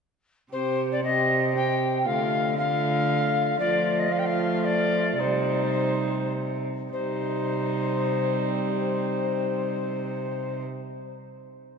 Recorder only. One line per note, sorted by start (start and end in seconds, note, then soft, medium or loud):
0.52 0.88 C5 medium
0.92 1.03 D5 medium
1.03 1.54 D#5 medium
1.55 2.07 G5 medium
2.06 2.57 F5 medium
2.57 3.58 F5 medium
3.59 4.00 D5 medium
3.99 4.13 D#5 medium
4.11 4.20 F5 medium
4.19 4.27 G5 medium
4.25 4.66 F5 medium
4.64 5.22 D5 medium
5.20 6.33 C5 medium
6.92 10.62 C5 medium